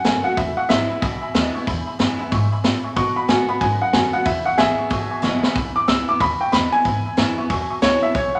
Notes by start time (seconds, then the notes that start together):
Already playing: F#2
0.04 F#1 D#3 A3 B3 F#4 G#5, snare, open hi-hat
0.24 B3 F#4 F#5, muted upright bass stroke
0.37 E1 E2 E5 G#5 B5, kick, open hi-hat
0.57 E5 F#5 G#5 C#6, muted upright bass stroke
0.69 G#1 E3 G#3 B3 E4 E5 G#5 B5, snare, open hi-hat
0.90 B3 E4 E5 G#5 B5
1.01 B1 B2 E5 G#5 B5, kick, open hi-hat
1.22 E5 G#5 B5, muted upright bass stroke
1.34 D#2 E3 G#3 B3 E4 E5 G#5 B5, snare, open hi-hat
1.54 B3 E4 E5 G#5 C#6
1.67 E2 E5 G#5 B5, kick, open hi-hat
1.86 E5 G#5 B5
1.99 F#2 E3 G#3 B3 E4 E5 G#5 B5, snare, open hi-hat
2.19 B3 E4 E5 G#5 B5, muted upright bass stroke
2.31 G#2 E5 G#5 C#6, kick, open hi-hat
2.52 E5 G#5 B5, muted upright bass stroke
2.64 A2 A#2 E5 G#5 B5, snare, open hi-hat
2.84 E5 G#5 C#6, muted upright bass stroke
2.96 B2 D#5 F#5 B5 C#6, kick, open hi-hat
3.16 D#5 F#5 B5, muted upright bass stroke
3.28 A2 D#3 A3 B3 F#4 D#5 F#5 G#5 C#6, snare, open hi-hat
3.48 B3 F#4 D#5 F#5 B5, muted upright bass stroke
3.61 F#2 G#2 D#5 F#5 G#5 B5, kick, open hi-hat
3.82 D#5 F#5 B5
3.93 F#2 D#3 A3 B3 F#4 D#5 F#5 G#5 B5, snare, open hi-hat
4.13 B3 F#4 D#5 F#5 B5, muted upright bass stroke
4.25 E2 E5 G#5 B5, kick, open hi-hat
4.45 E5 F#5 G#5 C#6, muted upright bass stroke
4.58 A1 E3 G#3 B3 E4 G#4 E5 B5, snare, open hi-hat
4.78 B3 E4 E5 G#5 C#6, muted upright bass stroke
4.90 G#1 B2 E5 G#5 C#6, kick, open hi-hat
5.11 E5 G#5 C#6, muted upright bass stroke
5.22 F#1 E3 G#3 B3 E4 E5 G#5 C#6, snare
5.43 E5 G#5 B5, muted upright bass stroke, snare
5.55 B1 E2 E5 G#5 B5, kick, open hi-hat
5.76 E5 G#5 B5 D6, muted upright bass stroke
5.88 C#2 E3 G#3 B3 E4 E5 G#5 B5 E6, snare, open hi-hat
6.08 B3 E4 E5 G#5 B5 D6
6.20 D#2 B2 E5 G#5 B5 C#6, kick, open hi-hat
6.40 E5 G5 G#5 C#6
6.52 E2 E3 G#3 B3 E4 E5 G#5 B5, snare, open hi-hat
6.72 B3 E4 E5 G#5 B5
6.85 E2 G#2 E5 G#5 B5, kick, open hi-hat
7.06 E5 G#5 B5
7.17 F#2 E3 G#3 B3 E4 E5 G#5 C#6, snare, open hi-hat
7.36 B3 E4 E5 G#5 C#6, muted upright bass stroke
7.50 E2 B2 E5 G#5 C#6, kick, open hi-hat
7.70 E5 G#5 C#6
7.82 C#2 E3 G#3 B3 E4 C#5 E5 G#5 B5, snare, open hi-hat
8.02 B3 E4 E5 G#5 B5, muted upright bass stroke
8.15 B1 E2 C#5 E5 G#5 C#6, kick, open hi-hat
8.35 E5 F#5 G#5 B5, muted upright bass stroke